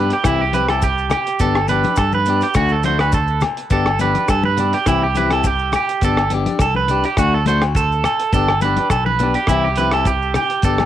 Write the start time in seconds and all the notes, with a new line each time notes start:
Already playing: G2 B3 D4 B4
0.00 G4
0.10 G4, closed hi-hat
0.23 C2 E3 C4 E4 G4, kick, cross-stick, closed hi-hat, low agogo, maracas
0.41 G4
0.53 C4 G4 B4, muted clean electric guitar stroke, closed hi-hat, high conga, maracas
0.68 C4 E4 G4 A4, cross-stick, closed hi-hat, low agogo
0.82 G4, kick, closed hi-hat, maracas
0.98 maracas
1.10 G4, cross-stick, closed hi-hat, low conga, low agogo, maracas
1.26 closed hi-hat, maracas
1.39 G1 B3 D4 G4 A4, kick, closed hi-hat, maracas
1.55 cross-stick, low agogo
1.68 B3 D4 G4 B4, closed hi-hat, high conga, low conga, maracas
1.83 G4, closed hi-hat, high conga, maracas
1.88 D4
1.96 G2 A4, kick, cross-stick, closed hi-hat, low agogo, maracas
2.12 B4, high conga, maracas
2.26 B3 D4, closed hi-hat, maracas
2.30 G4
2.41 G4, closed hi-hat, maracas
2.54 D2 A3 D4 F#4, kick, cross-stick, closed hi-hat, low conga, low agogo, maracas
2.69 A4, maracas
2.83 A3 D4 C5, closed hi-hat, high conga, maracas
2.88 F#4
2.99 F#4 B4, cross-stick, closed hi-hat, low agogo
3.04 D4
3.12 A4, kick, closed hi-hat, maracas
3.27 maracas
3.41 cross-stick, closed hi-hat, low conga, low agogo, maracas
3.57 closed hi-hat
3.70 G1 B3 D4 G4 A4, kick, closed hi-hat, maracas
3.86 cross-stick, low agogo
3.99 B3 D4 G4 B4, closed hi-hat, high conga, maracas
4.15 D4 G4, closed hi-hat, high conga, maracas
4.28 G2 A4, kick, cross-stick, closed hi-hat, low agogo, maracas
4.43 B4, high conga
4.57 B3 D4 G4, closed hi-hat, low conga, maracas
4.73 G4, closed hi-hat
4.86 C2 E3 C4 E4 G4, kick, cross-stick, closed hi-hat, low agogo, maracas
5.03 G4
5.15 E3 C4 E4 G4 B4, closed hi-hat, high conga, maracas
5.30 C4 E4 G4 A4, cross-stick, closed hi-hat, low agogo
5.44 G4, kick, closed hi-hat, maracas
5.59 maracas
5.72 G4, cross-stick, closed hi-hat, low conga, low agogo, maracas
5.89 closed hi-hat, maracas
6.01 G1 B3 D4 G4 A4, kick, closed hi-hat, maracas
6.17 cross-stick, low agogo
6.30 B3 D4 G4, closed hi-hat, high conga, maracas
6.46 D4 G4, closed hi-hat, high conga, maracas
6.59 C2 A4, kick, cross-stick, closed hi-hat, low agogo, maracas
6.75 B4, high conga
6.88 D4 G4, muted clean electric guitar stroke, closed hi-hat, low conga, maracas
7.04 G4, closed hi-hat
7.17 D2 A3 D4 F#4, kick, cross-stick, closed hi-hat, low agogo, maracas
7.34 A4
7.46 A3 D4 F#4 C5, closed hi-hat, high conga, maracas
7.61 F#4, cross-stick, closed hi-hat, low agogo
7.75 A4, kick, closed hi-hat, maracas
7.92 maracas
8.04 A4, cross-stick, closed hi-hat, low conga, low agogo, maracas
8.20 closed hi-hat, maracas
8.33 G1 B3 D4 G4 A4, kick, closed hi-hat, maracas
8.48 cross-stick, low agogo
8.61 B3 D4 G4 B4, closed hi-hat, high conga, maracas
8.77 D4 G4, closed hi-hat, high conga, maracas
8.90 B1 A4, kick, cross-stick, closed hi-hat, low agogo, maracas
9.06 B4, high conga
9.19 B3 D4 G4, closed hi-hat, low conga, maracas
9.34 G4, closed hi-hat
9.47 C2 E3 C4 E4, kick, cross-stick, closed hi-hat, low agogo, maracas
9.51 G4
9.64 G4
9.76 C4 B4, closed hi-hat, high conga, maracas
9.80 E4 G4
9.92 E4 G4 A4, cross-stick, closed hi-hat, low agogo
9.96 C4
10.05 G4, kick, closed hi-hat, maracas
10.22 maracas
10.34 G4, cross-stick, closed hi-hat, low conga, low agogo, maracas
10.50 closed hi-hat, maracas
10.62 G1 B3 D4 G4 A4, kick, closed hi-hat, maracas
10.78 cross-stick, high conga, low agogo, maracas